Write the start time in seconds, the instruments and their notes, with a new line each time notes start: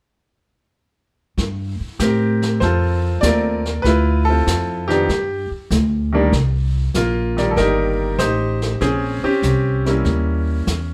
1.37 upright bass G2, brush sweep, kick, snare
1.80 muted upright bass stroke
1.99 upright bass A2, grand piano C4 G4 A#4, kick, snare, hi-hat pedal
2.42 snare
2.60 upright bass F2, grand piano F4 A4 C5, brush sweep, kick, snare
3.21 upright bass D#2, grand piano A3 A#3 C4 F4 D5, kick, snare, hi-hat pedal
3.26 grand piano A#4
3.65 snare
3.82 upright bass D2, grand piano B4, brush sweep, kick, snare
3.86 grand piano E4 F4
4.25 grand piano A4
4.30 grand piano C4 F4
4.47 upright bass F2, kick, snare, hi-hat pedal
4.88 grand piano D#3 F3 B3 D4 G4, snare
5.09 upright bass G2, brush sweep, kick, snare
5.51 muted upright bass stroke
5.71 upright bass D2, kick, snare, hi-hat pedal
6.12 grand piano D#3 G3 A#3 D4
6.32 upright bass C2, brush sweep, kick, snare
6.94 upright bass A#1, grand piano A#3 F4, kick, snare, hi-hat pedal
7.37 grand piano D#3 G3 A#3 D5, snare
7.51 grand piano A4
7.56 upright bass G1, grand piano D#4 G4 A#4, brush sweep, kick, snare
8.19 upright bass A1, grand piano D#4 G4 C5, kick, snare, hi-hat pedal
8.62 snare
8.81 upright bass A#1, grand piano C4 C#4 G#4, brush sweep, kick, snare
9.23 grand piano C4 C#4 G4, muted upright bass stroke
9.42 upright bass C2, kick, snare, hi-hat pedal
9.85 grand piano G3 A#3 C#4 E4, snare
10.05 upright bass D#2, brush sweep, kick, snare
10.67 upright bass E2, kick, snare, hi-hat pedal